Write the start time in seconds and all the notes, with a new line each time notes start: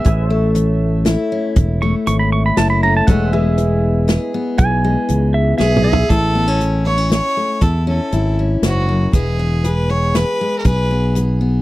Already playing: E5
0.05 A1 A2 A3 G#4 A4 B4 C#5 E5, kick, closed hi-hat
0.09 E5
0.26 A4
0.30 A3 C#5
0.55 E3, closed hi-hat
1.05 E2 E4, snare, closed hi-hat
1.32 C#4
1.56 E1 A2, kick, closed hi-hat
1.82 A3 C#6
2.07 G#1 E3 C#6, closed hi-hat
2.19 B5
2.32 C#6
2.46 B5
2.57 F#1 E2 E4 A5, snare, closed hi-hat
2.70 B5
2.83 C#4 A#5
2.97 A5
3.07 E1 E2 E3 G#3 B3 E4 G#4 A4 B4 C#5 F#5, kick, closed hi-hat
3.11 E5
3.29 G#4
3.33 G#3 B4 E5
3.58 E3, closed hi-hat
4.08 B2 G#4, snare, closed hi-hat
4.34 B3
4.58 B1 E2 G#5, kick, closed hi-hat
4.84 G#3
5.09 C#2 E3, closed hi-hat
5.34 E5
5.58 B1 B2 G#4 E5, snare
5.76 mid tom
5.84 B3 E5
5.93 floor tom
6.09 A1 A2 E4 A4, kick, closed hi-hat
6.35 B3
6.48 C#4
6.60 E3 E4, closed hi-hat
6.85 B3 C#5
6.98 C#4
7.10 E3 C#5, snare, closed hi-hat
7.37 A3
7.61 E2 A2 E4 A4, kick, closed hi-hat
7.87 C#4 A4
8.12 G#1 E3 E4, closed hi-hat
8.39 C#4
8.62 F#1 G#2 F#4, snare, closed hi-hat
8.89 F#2
9.13 E1 E2 E3 G#3 B3 G#4, kick, closed hi-hat
9.39 B3
9.64 E3 G#4 B4, closed hi-hat
9.90 B3 C#5
10.15 E3 B4, snare, closed hi-hat
10.41 G#3
10.59 A#4
10.65 B1 E2 G#4 B4, kick, closed hi-hat
10.91 B3
11.15 E3 G#4, closed hi-hat
11.41 B3